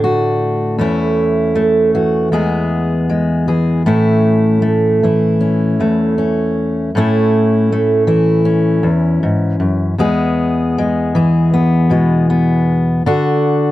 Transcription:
steel-string acoustic guitar
Already playing: A2 D3 A3 D4
0.04 F#4
0.78 E2 A3 C#4 E4
1.55 A3
1.95 E3 F#4
2.32 E2 G#3 B3 G#4
3.10 G#3
3.48 E3 G#4
3.86 A2 A3 C#4 E4
4.62 A3
5.03 E3 E4
5.41 C#4
5.80 E2 A3
6.18 C#4
6.95 A2 A3 C#4 E4
7.72 A3
8.07 E3 E4
8.45 C#4
8.83 E2
9.23 G#2
9.60 F#2
9.98 E2 G#3 B3 G#4
10.78 G#3
11.15 E3 G#4
11.54 B3
11.90 B2 G#3
12.30 B3
13.06 D3 D4 F#4

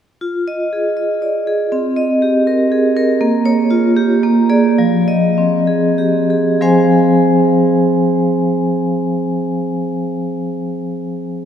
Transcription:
vibraphone
0.21 F4
0.48 D#5
0.73 G#4
0.97 D#5
1.22 D5
1.47 G#4
1.72 C4
1.96 D#5
2.22 G4
2.47 A#4
2.72 G#4
2.97 A#4
3.21 A#3
3.46 C#5
3.71 F4
3.97 G4
4.23 A#3
4.50 G#4 D5
4.78 F3
5.08 D#5
5.38 C4
5.67 G#4
5.98 G4
6.30 G#4
6.61 F3 C4 G#4 C5 F5 G#5

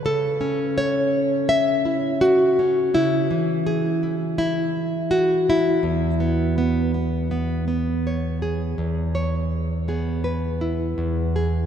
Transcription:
nylon-string guitar
Already playing: E4
0.05 C#3 A4
0.41 C#4
0.78 C#5
1.49 E5
1.85 E4
2.21 F#4
2.59 C#4
2.94 C#3 E4
3.31 E3
3.67 G#4
4.03 E4
4.38 E4
5.11 F#4
5.50 E4
5.83 E2
6.20 B3
6.58 B3
6.94 B3
7.31 B3
7.68 B3
8.07 C#5
8.42 G#4
8.78 E2
9.15 C#5
9.88 B3 G#4
10.24 B4
10.61 E4
10.98 E2
11.36 G#4

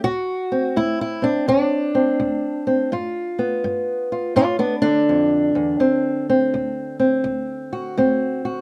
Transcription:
steel-string acoustic guitar
0.04 D2 F#4
0.52 C4
0.76 D2 E4
1.01 E4
1.22 C4 D4
1.48 D2 D4
1.95 C4
2.20 D2
2.67 C4
2.92 G2 F4
3.39 B3
3.64 G2
4.12 F4
4.36 G2 D4 F4
4.59 B3 D4
4.82 D3 D4
5.09 F2
5.55 E2
5.80 D2 C4
6.30 C4
6.54 D2
7.00 C4
7.24 D2
7.73 F#4
7.97 D2 C4
8.45 F#4

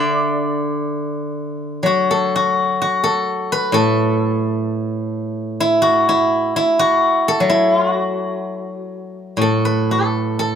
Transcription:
guzheng
Already playing: D3 D5 E5
1.83 F#3 F#4
2.11 A4
2.36 F#4
2.82 F#4
3.04 A4
3.52 B4
3.72 A2 A4
5.60 E4
5.82 F#4
6.09 E4
6.56 E4
6.79 F#4
7.28 A4
7.40 F#3
7.50 E4
7.76 F4
7.91 F#4
9.37 A2
9.41 A4
9.65 B4
9.91 A4
10.39 A4

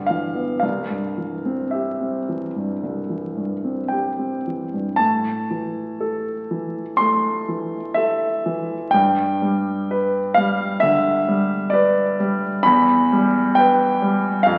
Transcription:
grand piano
Already playing: G2 D3 G5
0.06 E3 F5
0.35 B3
0.60 C2 F5
0.90 G2
1.17 E3
1.45 C4
1.71 G4 E5
2.01 C4
2.29 E3
2.56 G2
2.83 C2
3.10 E3
3.37 G2
3.64 C4
3.88 G4 G5
4.19 C4
4.47 E3
4.74 G2
4.96 A2 A5
5.50 E3
6.00 A4
6.51 E3
6.97 A3 C6
7.48 E3
7.94 A4 E5
8.46 E3
8.91 G2 G5
9.42 G3
9.91 B4
10.34 G3 F5
10.80 D3 E5
11.28 G3
11.70 B4 D5
12.20 G3
12.63 E2 B5
13.12 G3
13.55 B4 G5
14.02 G3
14.43 F2 F5

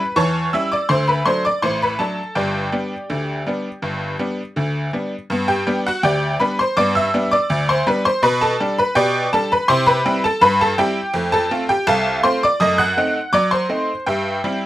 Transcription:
honky-tonk piano
Already playing: B4
0.16 E2 E3 C#5 A5 C#6
0.53 G3 C#4 E4 E5 E6
0.72 D5 D6
0.89 D2 D3 C5 C6
1.08 B4 B5
1.26 F#3 A3 D4 C5 C6
1.45 D5 D6
1.62 A1 A2 C5 C6
1.82 B4 B5
1.99 F#3 A3 D4 A4 A5
2.35 G1 G2 G4 D5 G5
2.72 G3 B3 D4
3.10 D2 D3
3.47 G3 B3 D4
3.82 G1 G2
4.19 G3 B3 D4
4.56 D2 D3
4.93 G3 B3 D4
5.30 G2 B3
5.48 G4 G5
5.67 G3 B3 D4
5.87 F#4 F#5
6.03 D2 G4 D5 G5
6.40 G3 B3 D4 B4 B5
6.59 C5 C6
6.77 G2 B3 D5 D6
6.95 E5 E6
7.14 G3 B3 D4
7.31 D5 D6
7.50 D2
7.69 C5 C6
7.87 G3 B3 D4 B4 B5
8.05 C5 C6
8.23 B2 B4 B5
8.41 A4 A5
8.60 G3 D4
8.78 B4 B5
8.95 B2 G4 D5 G5
9.33 G3 D4 A4 A5
9.52 B4 B5
9.68 C3 E4 C5 C6
9.86 B4 B5
10.05 G3 C4 E4
10.24 A4 A5
10.41 G2 B4 B5
10.61 A4 A5
10.78 G3 C4 E4 G4 G5
11.14 F2 A3
11.32 A4 A5
11.50 A3 C4 F4
11.69 G4 G5
11.87 C2 A4 F5 A5
12.23 A3 C4 F4 C5 C6
12.43 D5 D6
12.60 F#2 A3 D#5 D#6
12.78 F#5 F#6
12.97 A3 C4 D#4
13.33 F#3 D5 D6
13.51 C5 C6
13.69 A3 C4 D#4
14.06 G2 G4 E5 G5
14.44 G3 C4 E4

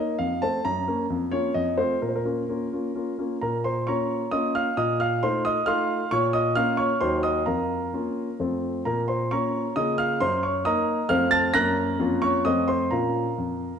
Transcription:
grand piano
Already playing: A#3 D#4 A#4 D#5
0.19 F2 F5
0.42 A3 C4 C5 A5
0.65 F#2 A#5
0.88 A#3 C#4 A#4
1.10 F2
1.31 A#3 C#4 F4 C#5
1.54 F2 D#5
1.78 A3 C4 F4 C5
2.02 A#2 A#4
2.09 C5
2.16 A#4
2.25 A#3 C#4 F4
2.49 A#3 C#4 F4
2.72 A#3 C#4 F4
2.95 A#3 C#4 F4
3.19 A#3 C#4 F4
3.41 A#2 A#4 A#5
3.64 C5 C6
3.87 A#3 C#4 F4 C#5 A#5 C#6
4.31 A#3 C#4 F4 D#5 D#6
4.55 F5 F6
4.77 A#2 D#5 D#6
5.00 F5 F6
5.23 A3 D#4 F4 C5 C6
5.45 D#5 D#6
5.66 A3 D#4 F4 F5 C6 F6
6.11 A#2 C#5 C#6
6.33 D#5 D#6
6.55 A#3 C#4 F4 F5 F6
6.77 C#5 C#6
7.01 D#2 F#3 D#4 F#4 C5 C6
7.23 D#5 D#6
7.46 F2 A#4 F5 A#5
7.94 A#3 C#4 F4
8.39 F2 A3 C4 F4
8.85 A#2 A#4 A#5
9.08 C5 C6
9.31 A#3 C#4 F4 C#5 A#5 C#6
9.76 C#3 A#3 C#4 F4 D#5 D#6
9.98 F5 F6
10.20 F#2 C5 C6
10.43 C#5 C#6
10.65 A#3 D#4 A#4 D#5 A#5 D#6
11.09 F2 A3 C4 C5 F5 F6
11.31 A5 A6
11.54 F#2 A#3 C#4 A#4 A#5 F#6 A#6
11.99 F2 A#3 C#4 F4
12.22 C#5 C#6
12.45 F2 A3 C4 F4 D#5 D#6
12.68 C5 C6
12.91 A#2 C#4 F4 A#4 F5 A#5
13.38 F2

